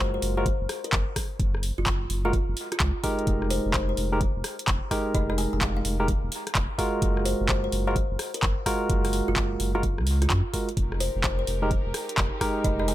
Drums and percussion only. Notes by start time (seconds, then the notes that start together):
0.22 open hi-hat
0.46 kick, closed hi-hat
0.69 cross-stick, open hi-hat
0.84 closed hi-hat
0.93 kick, clap, closed hi-hat
1.16 kick, cross-stick, open hi-hat
1.40 kick, closed hi-hat
1.55 cross-stick
1.63 open hi-hat
1.86 kick, clap, closed hi-hat
2.10 open hi-hat
2.33 kick, closed hi-hat
2.57 open hi-hat
2.72 cross-stick, closed hi-hat
2.80 kick, clap, closed hi-hat
3.04 kick, open hi-hat
3.19 closed hi-hat
3.27 kick, closed hi-hat
3.42 cross-stick
3.50 open hi-hat
3.74 kick, clap, closed hi-hat
3.97 open hi-hat
4.21 kick, closed hi-hat
4.44 cross-stick, open hi-hat
4.59 closed hi-hat
4.68 kick, clap, closed hi-hat
4.91 kick, cross-stick, open hi-hat
5.15 kick, closed hi-hat
5.30 cross-stick
5.38 open hi-hat
5.61 kick, clap, closed hi-hat
5.85 open hi-hat
6.08 kick, closed hi-hat
6.32 open hi-hat
6.47 cross-stick, closed hi-hat
6.55 kick, clap, closed hi-hat
6.79 kick, open hi-hat
7.02 kick, closed hi-hat
7.17 cross-stick
7.25 open hi-hat
7.49 kick, clap, closed hi-hat
7.72 open hi-hat
7.96 kick, closed hi-hat
8.19 cross-stick, open hi-hat
8.34 closed hi-hat
8.43 kick, clap, closed hi-hat
8.66 kick, cross-stick, open hi-hat
8.90 kick, closed hi-hat
9.05 cross-stick, open hi-hat
9.13 open hi-hat
9.36 kick, clap, closed hi-hat
9.60 open hi-hat
9.83 kick, closed hi-hat
9.98 cross-stick
10.07 open hi-hat
10.22 cross-stick, closed hi-hat
10.30 kick, clap, closed hi-hat
10.54 kick, open hi-hat
10.69 closed hi-hat
10.77 kick, closed hi-hat
10.92 cross-stick
11.00 open hi-hat
11.24 kick, clap, closed hi-hat
11.47 open hi-hat
11.71 kick, closed hi-hat
11.94 cross-stick, open hi-hat
12.09 closed hi-hat
12.18 kick, clap, closed hi-hat
12.41 kick, cross-stick, open hi-hat
12.64 kick, closed hi-hat
12.80 cross-stick
12.88 open hi-hat